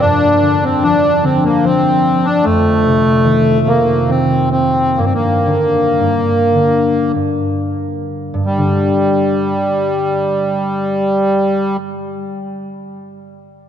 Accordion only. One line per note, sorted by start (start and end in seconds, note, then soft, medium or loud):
0.00 0.64 D4 medium
0.63 0.84 C4 medium
0.83 1.24 D4 medium
1.24 1.44 C4 medium
1.44 1.65 A#3 medium
1.63 2.26 C4 medium
2.24 2.45 D4 medium
2.44 3.69 A3 medium
3.67 4.10 A#3 medium
4.09 4.49 C4 medium
4.51 5.00 C4 medium
4.97 5.05 A#3 medium
5.04 5.13 C4 soft
5.14 7.12 A#3 medium
8.45 11.77 G3 medium